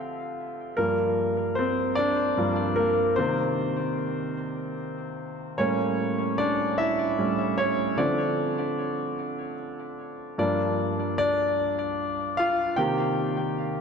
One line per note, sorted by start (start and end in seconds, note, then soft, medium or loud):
0.00 0.80 D3 medium
0.00 0.78 F3 soft
0.00 0.79 C4 medium
0.00 0.79 F4 medium
0.00 0.79 F5 medium
0.77 1.31 G2 soft
0.77 1.31 F3 soft
0.77 1.54 A#3 medium
0.77 1.53 A#4 medium
1.55 1.68 C4 medium
1.55 1.65 C5 medium
1.95 2.74 D4 medium
1.95 2.79 D5 medium
2.37 2.73 G2 soft
2.37 2.74 F3 soft
2.37 2.74 A#3 soft
2.76 3.16 A#3 medium
2.76 3.18 A#4 medium
3.16 4.34 C3 soft
3.16 4.34 D#3 soft
3.16 4.35 A#3 medium
3.16 4.74 C4 medium
3.16 4.73 C5 medium
5.58 7.16 A2 soft
5.58 7.17 G3 soft
5.58 7.94 A#3 medium
5.58 6.34 C#4 medium
5.58 6.40 C#5 medium
6.38 6.48 D4 medium
6.38 6.47 D5 medium
6.78 7.54 E4 medium
6.78 7.54 E5 medium
7.18 7.54 A2 soft
7.18 7.54 G3 soft
7.18 7.54 C#4 soft
7.58 7.95 C#4 medium
7.58 7.95 C#5 medium
7.97 8.51 D3 soft
7.97 8.51 F3 soft
7.97 8.51 C4 medium
7.97 9.54 D4 medium
7.97 9.54 D5 medium
10.38 12.74 G2 soft
10.38 12.74 F3 soft
10.38 12.74 A#3 medium
10.38 11.14 D4 medium
10.38 11.14 D5 medium
11.18 12.34 D4 medium
11.18 12.41 D5 medium
12.37 12.76 F4 medium
12.37 12.79 F5 medium
12.76 13.31 C3 soft
12.76 13.31 D#3 soft
12.76 13.31 A#3 medium
12.76 13.81 G4 medium
12.76 13.81 G5 medium